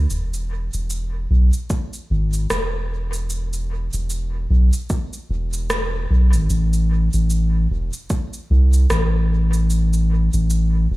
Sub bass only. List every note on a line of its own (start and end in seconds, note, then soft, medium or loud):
0.10 0.69 E1 loud
0.73 1.27 E1 medium
1.30 1.51 B1 loud
2.10 2.46 G#1 medium
2.50 3.89 E1 medium
3.93 4.47 E1 medium
4.50 4.70 B1 loud
5.29 6.07 E1 loud
6.10 6.34 B1 medium
6.33 6.48 G#1 medium
6.50 7.09 A1 medium
7.13 7.67 A1 medium
7.70 7.91 E1 medium
8.50 8.86 C2 medium
8.90 10.29 A1 medium
10.33 10.87 A1 medium
10.90 10.97 E1 loud